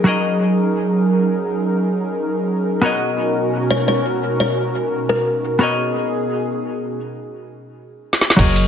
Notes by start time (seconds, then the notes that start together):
Already playing: F#3 C#4 D#4 G#4 A#4
0.04 F#3 F#4 G#4 A#4
0.08 D#5
2.81 B2 B3 C#4 F#4 A#4 C#5
2.86 D#5
3.71 C#5
3.88 C#5
4.40 C#5
5.09 A#4
5.59 B3 F#4 G#4 A#4 C#5
5.63 D#5
8.13 snare
8.21 snare
8.30 snare
8.36 F#1 F#3 C#4 D#4 F#4 G#4 A#4, kick, closed hi-hat, crash
8.41 D#5
8.56 closed hi-hat, shaker